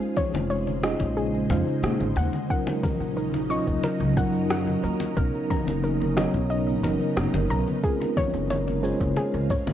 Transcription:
Already playing: C#3 G#3 C#4 D#4 F4 G#4 C5
0.01 shaker
0.17 C#5, kick, low conga, shaker
0.34 F1, muted conga, shaker
0.50 C#5, shaker
0.67 high conga, shaker
0.83 G#3 C#4 D#4 F4 G#4 D#5, cross-stick, shaker
1.00 A#1, kick, muted conga, shaker
1.17 G#4, shaker
1.34 shaker
1.50 F2 G#3 C#4 D#4 F4 C5 F5, muted conga, low conga, shaker
1.68 shaker
1.83 A#2 G#4, cross-stick, shaker
2.00 G#1, high conga, shaker
2.16 D#2 F#3 D#4 A#4 F#5, muted conga, shaker
2.33 high conga, shaker
2.49 F#3 C#4 D#4 F4 A#4 F#5, kick, shaker
2.67 muted conga, shaker
2.83 A#4, kick, high conga, low conga, shaker
3.00 A#1, shaker
3.17 A#4, shaker
3.34 muted conga, high conga, shaker
3.49 F#3 C#4 D#4 F4 D#5 C#6, shaker
3.67 D#2, kick, shaker
3.84 A#4, muted conga, shaker
4.00 C#2, shaker
4.16 F#2 F#3 C#4 D#4 F4 A#4 F#5, kick, low conga, shaker
4.34 shaker
4.50 F#5, cross-stick, muted conga, shaker
4.67 high conga, shaker
4.83 D#2 A#4, shaker
5.00 muted conga, shaker
5.15 B1 F#3 B3 C#4 D#4 A#4, kick, shaker
5.35 shaker
5.50 A#5, kick, low conga, shaker
5.67 F#1, muted conga, shaker
5.84 A#4, shaker
6.01 high conga, shaker
6.16 F#3 B3 C#4 D#4 C#5 D#5, cross-stick, muted conga, shaker
6.34 B1, kick, shaker
6.50 D#5, shaker
6.68 shaker
6.83 F#1 F#3 B3 C#4 D#4 A#4, muted conga, low conga, shaker
7.01 shaker
7.17 F#1 A#4, cross-stick, shaker
7.34 F#1, muted conga, high conga, shaker
7.50 B1 A#5, shaker
7.68 high conga, shaker
7.82 G#3 C4 C#4 F4 G#4 A#4, kick, shaker
8.01 muted conga, shaker
8.17 C#5, kick, high conga, low conga, shaker
8.33 F#1, shaker
8.50 C#5, muted conga, shaker
8.68 high conga, shaker
8.83 G#3 C#4 F4 G#4 C5 C#5, shaker
9.00 F#1, kick, shaker
9.17 G#4, muted conga, shaker
9.34 C#2, shaker
9.50 C#5, kick, low conga, shaker
9.67 F#1, muted conga, shaker

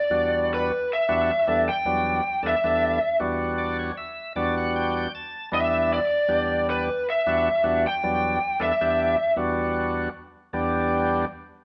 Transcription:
Already playing: D5
0.10 E2 G3 B3 D4 F#4
0.54 B4
0.93 E5
1.09 E2 G3 B3 D4 F#4
1.47 E2 G3 B3 D4 A4
1.69 G5
1.85 E2 F#3 G3 B3 D4
2.43 E2 G3 B3 D4 A4
2.47 E5
2.64 E2 G3 B3 D4 A4
3.20 E2 G3 B3 D4 F#4
3.58 D5
3.79 C#5
3.97 E5
4.36 E2 G3 B3 D4 F#4 D5
4.57 F#5
4.76 G5
4.97 G5
5.15 A5
5.52 E2 G3 B3 D4 E4 E5
5.93 D5
6.29 E2 G3 B3 D4 G4
6.70 B4
7.10 E5
7.26 E2 G3 B3 D4 F#4
7.63 E2 G3 B3 D4 F#4
7.87 G5
8.03 E2 F#3 G3 B3 D4
8.60 E2 G3 B3 D4 A4 E5
8.81 E2 G3 B3 D4 G4
9.36 E2 G3 B3 D4 F#4
10.53 E2 G3 B3 D4 G4

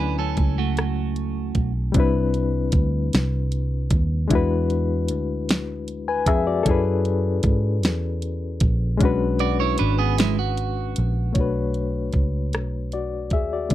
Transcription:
Already playing: D2 F#3 A3 C#4 E4 B4 G#5
0.00 D4
0.19 C#4 A4
0.37 C#2, kick, closed hi-hat
0.58 A3 F#4
0.77 cross-stick, closed hi-hat
1.16 closed hi-hat
1.55 B1, kick, closed hi-hat
1.92 C2 G3 C4 D4, kick, closed hi-hat
1.98 E4 B4
2.34 closed hi-hat
2.72 D2, kick, closed hi-hat
3.13 C2, snare, closed hi-hat
3.52 closed hi-hat
3.91 D#2, kick, closed hi-hat
4.28 E2 G#3 D4 E4, kick, closed hi-hat
4.33 F#4 B4
4.70 closed hi-hat
5.08 D2, closed hi-hat
5.49 snare, closed hi-hat
5.88 closed hi-hat
6.08 B4 G#5
6.26 F2 G#4 E5, kick, closed hi-hat
6.47 F#4 D5
6.63 F#2 C#4 E4 A4, kick, closed hi-hat
6.69 G#4 B4
7.05 closed hi-hat
7.43 G#2, kick, closed hi-hat
7.83 E2, snare, closed hi-hat
8.22 closed hi-hat
8.60 A#1, kick, closed hi-hat
8.97 B1 G#3 C#4 D4, kick, closed hi-hat
9.03 F#4 B4
9.39 F#4 D5, closed hi-hat
9.60 E4 C#5
9.78 G#1 D4 B4, closed hi-hat
9.99 B3 G#4
10.18 G#3 E4, snare, closed hi-hat
10.39 F#4
10.57 closed hi-hat
10.96 A#1, closed hi-hat
11.33 B1 A3 D4 C#5, kick, closed hi-hat
11.38 F#4 B4
11.74 closed hi-hat
12.13 C#2, kick, closed hi-hat
12.53 B1, cross-stick, closed hi-hat
12.92 F#4 D5, closed hi-hat
13.30 D#2 G#4 E5, kick, closed hi-hat
13.53 F#4 D5
13.69 E2 G#3 C#4, kick, closed hi-hat

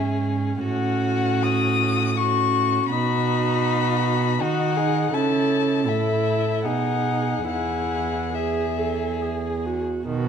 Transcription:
Already playing: G#2 C#4 G#4
0.62 A2 C#4 F#4 F#5
1.43 D#6
2.17 C#4 F#4 C#6
2.90 B2 D#4 F#4 B5
4.40 D#3 D#4 F#4 F#5
4.76 G#4
5.12 C#3 E4 A4 A5
5.87 A2 E4 A4 E5
6.65 B2 D#4 G#4 F#5
7.47 E2 E4 G#4 F#5
8.35 G#4 E5
8.78 A4
9.21 G#4
9.65 F#4
10.07 B2 D#3 F#4

